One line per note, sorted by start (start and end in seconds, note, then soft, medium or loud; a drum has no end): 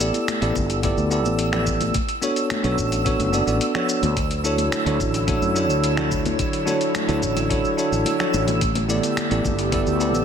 0.00 0.38 B3 loud
0.00 0.38 E4 medium
0.00 0.38 G4 medium
0.00 0.39 A4 medium
0.00 0.39 D5 loud
0.00 10.25 E6 medium
0.00 shaker medium
0.13 closed hi-hat soft
0.13 muted conga medium
0.13 shaker soft
0.28 finger snap medium
0.28 closed hi-hat medium
0.28 high conga loud
0.28 shaker soft
0.41 0.53 A1 loud
0.41 0.80 B3 medium
0.41 0.80 E4 medium
0.41 0.80 G4 medium
0.41 0.80 A4 medium
0.41 0.81 D5 loud
0.41 closed hi-hat soft
0.41 shaker soft
0.55 0.93 G1 medium
0.55 kick loud
0.55 muted conga medium
0.55 shaker medium
0.70 closed hi-hat soft
0.70 shaker soft
0.83 1.08 B3 loud
0.83 1.08 E4 medium
0.83 1.09 G4 medium
0.83 1.09 A4 medium
0.83 1.09 D5 loud
0.83 kick loud
0.83 closed hi-hat medium
0.83 muted conga medium
0.83 shaker soft
0.97 1.25 D2 medium
0.97 high conga medium
0.97 shaker soft
1.10 1.49 B3 medium
1.10 1.50 E4 medium
1.10 1.50 G4 medium
1.10 1.50 A4 medium
1.10 1.50 D5 loud
1.10 shaker medium
1.25 1.90 A1 medium
1.25 muted conga medium
1.25 shaker soft
1.39 closed hi-hat medium
1.39 shaker soft
1.52 1.92 B3 medium
1.52 1.93 E4 medium
1.52 1.93 G4 medium
1.52 1.93 A4 medium
1.52 1.94 D5 medium
1.52 finger snap medium
1.52 muted conga medium
1.52 low conga medium
1.52 shaker soft
1.67 kick medium
1.67 shaker medium
1.81 closed hi-hat soft
1.81 high conga loud
1.81 shaker soft
1.94 kick loud
1.94 closed hi-hat medium
1.94 muted conga medium
1.94 shaker soft
2.09 closed hi-hat soft
2.09 shaker soft
2.21 2.60 B3 medium
2.21 2.61 D4 medium
2.21 2.61 F#4 medium
2.21 2.61 A4 medium
2.21 2.61 C#5 loud
2.21 muted conga soft
2.21 shaker medium
2.36 closed hi-hat soft
2.36 shaker soft
2.50 finger snap medium
2.50 closed hi-hat medium
2.50 high conga loud
2.50 shaker soft
2.63 2.75 B1 loud
2.63 3.02 B3 medium
2.63 3.02 D4 medium
2.63 3.02 F#4 medium
2.63 3.03 A4 medium
2.63 3.03 C#5 loud
2.63 closed hi-hat soft
2.63 muted conga medium
2.63 shaker soft
2.78 3.15 A1 medium
2.78 kick medium
2.78 shaker medium
2.92 closed hi-hat soft
2.92 muted conga soft
2.92 shaker soft
3.05 3.30 B3 loud
3.05 3.31 D4 medium
3.05 3.31 F#4 medium
3.05 3.31 A4 medium
3.05 3.31 C#5 loud
3.05 kick loud
3.05 closed hi-hat medium
3.05 shaker soft
3.19 3.42 F#1 loud
3.19 closed hi-hat soft
3.19 high conga medium
3.19 shaker soft
3.32 3.44 B3 medium
3.32 3.44 D4 medium
3.32 3.44 F#4 medium
3.32 3.44 A4 medium
3.32 3.45 D5 loud
3.32 muted conga medium
3.32 shaker medium
3.46 3.58 A1 medium
3.46 3.71 B3 medium
3.46 3.72 D4 medium
3.46 3.72 F#4 medium
3.46 3.72 A4 medium
3.46 3.72 D5 medium
3.46 shaker soft
3.61 closed hi-hat medium
3.61 muted conga soft
3.61 shaker soft
3.74 4.15 B3 medium
3.74 4.15 D4 medium
3.74 4.15 F#4 medium
3.74 4.15 A4 medium
3.74 4.16 C#5 medium
3.74 finger snap medium
3.74 low conga medium
3.74 shaker soft
3.89 shaker medium
4.03 4.68 D2 loud
4.03 closed hi-hat soft
4.03 muted conga medium
4.03 high conga medium
4.03 shaker soft
4.16 8.57 D3 medium
4.16 8.57 F#3 medium
4.16 8.57 E4 loud
4.16 8.57 C#5 medium
4.16 kick loud
4.16 closed hi-hat medium
4.16 muted conga soft
4.16 shaker soft
4.31 closed hi-hat soft
4.31 shaker soft
4.44 4.83 D4 medium
4.44 4.83 E4 medium
4.44 4.83 F#4 medium
4.44 4.83 A4 medium
4.44 4.84 C#5 loud
4.44 shaker medium
4.58 closed hi-hat soft
4.58 muted conga medium
4.58 shaker soft
4.72 finger snap medium
4.72 closed hi-hat medium
4.72 high conga medium
4.72 shaker soft
4.85 4.97 D2 loud
4.85 5.24 D4 medium
4.85 5.25 E4 medium
4.85 5.25 F#4 medium
4.85 5.25 A4 medium
4.85 5.25 C#5 loud
4.85 closed hi-hat soft
4.85 muted conga medium
4.85 shaker soft
5.00 5.37 A1 medium
5.00 kick loud
5.00 shaker medium
5.14 closed hi-hat soft
5.14 shaker soft
5.27 5.52 D4 loud
5.27 5.53 E4 medium
5.27 5.53 F#4 medium
5.27 5.53 A4 medium
5.27 5.53 C#5 loud
5.27 kick loud
5.27 closed hi-hat medium
5.27 muted conga medium
5.27 shaker soft
5.42 5.70 F#2 medium
5.42 high conga medium
5.42 shaker soft
5.55 5.94 D4 medium
5.55 5.94 E4 medium
5.55 5.94 F#4 medium
5.55 5.94 A4 medium
5.55 5.95 C#5 loud
5.55 muted conga soft
5.55 shaker medium
5.70 6.35 D2 medium
5.70 shaker soft
5.84 closed hi-hat medium
5.84 shaker soft
5.95 6.62 D4 medium
5.95 6.63 E4 medium
5.95 6.64 F#4 medium
5.95 6.64 A4 medium
5.95 finger snap medium
5.95 muted conga medium
5.95 low conga medium
5.95 shaker soft
5.99 6.65 C#5 medium
6.11 kick medium
6.11 shaker medium
6.26 closed hi-hat soft
6.26 muted conga medium
6.26 high conga loud
6.26 shaker soft
6.39 kick loud
6.39 closed hi-hat medium
6.39 shaker soft
6.53 closed hi-hat soft
6.53 shaker soft
6.66 7.05 D4 loud
6.66 7.05 E4 medium
6.66 7.05 F#4 medium
6.66 7.05 A4 medium
6.66 7.06 C#5 loud
6.66 muted conga medium
6.66 shaker medium
6.81 closed hi-hat soft
6.81 shaker soft
6.95 finger snap medium
6.95 closed hi-hat medium
6.95 muted conga medium
6.95 high conga medium
6.95 shaker soft
7.07 7.20 D2 loud
7.07 7.46 D4 medium
7.07 7.47 E4 medium
7.07 7.47 F#4 medium
7.07 7.47 A4 medium
7.07 7.47 C#5 loud
7.07 closed hi-hat soft
7.07 shaker soft
7.23 7.60 A1 loud
7.23 kick medium
7.23 shaker medium
7.36 closed hi-hat soft
7.36 muted conga medium
7.36 shaker soft
7.49 7.75 D4 loud
7.49 7.75 E4 medium
7.49 7.75 F#4 medium
7.49 7.76 A4 loud
7.49 7.76 C#5 loud
7.49 kick loud
7.49 closed hi-hat medium
7.49 shaker soft
7.65 muted conga medium
7.65 high conga medium
7.65 shaker soft
7.77 8.16 D4 medium
7.77 8.16 E4 medium
7.77 8.16 F#4 medium
7.77 8.17 A4 medium
7.77 8.17 C#5 loud
7.77 shaker medium
7.92 8.03 A1 medium
7.92 shaker soft
8.06 closed hi-hat medium
8.06 muted conga medium
8.06 shaker soft
8.19 8.59 D4 medium
8.19 8.59 E4 medium
8.19 8.60 F#4 medium
8.19 8.60 A4 medium
8.19 8.60 C#5 medium
8.19 finger snap medium
8.19 low conga medium
8.19 shaker soft
8.34 8.99 A1 medium
8.34 muted conga medium
8.34 shaker medium
8.48 closed hi-hat soft
8.48 high conga loud
8.48 shaker soft
8.61 10.25 D3 medium
8.61 10.25 A3 medium
8.61 10.25 B3 medium
8.61 10.25 G4 medium
8.61 kick loud
8.61 closed hi-hat medium
8.61 shaker soft
8.75 closed hi-hat soft
8.75 muted conga medium
8.75 shaker soft
8.88 9.27 B3 medium
8.88 9.27 E4 medium
8.88 9.28 G4 medium
8.88 9.28 A4 medium
8.88 9.28 D5 loud
8.88 shaker medium
9.03 closed hi-hat soft
9.03 muted conga medium
9.03 shaker soft
9.17 finger snap medium
9.17 closed hi-hat medium
9.17 high conga medium
9.17 shaker soft
9.30 9.42 A1 loud
9.30 9.69 B3 medium
9.30 9.69 E4 medium
9.30 9.69 G4 medium
9.30 9.69 A4 medium
9.30 9.70 D5 loud
9.30 closed hi-hat soft
9.30 shaker soft
9.45 9.82 G1 medium
9.45 kick loud
9.45 muted conga medium
9.45 shaker medium
9.59 closed hi-hat soft
9.59 shaker soft
9.72 9.97 B3 loud
9.72 9.97 E4 medium
9.72 9.97 G4 medium
9.72 9.98 A4 medium
9.72 9.98 D5 loud
9.72 kick loud
9.72 closed hi-hat medium
9.72 muted conga medium
9.72 shaker soft
9.86 10.14 D2 medium
9.86 high conga medium
9.86 shaker soft
9.99 10.25 B3 medium
9.99 10.25 E4 medium
9.99 10.25 G4 medium
9.99 10.25 A4 medium
9.99 10.25 D5 loud
9.99 shaker medium
10.14 10.25 A1 medium
10.14 muted conga medium
10.14 shaker soft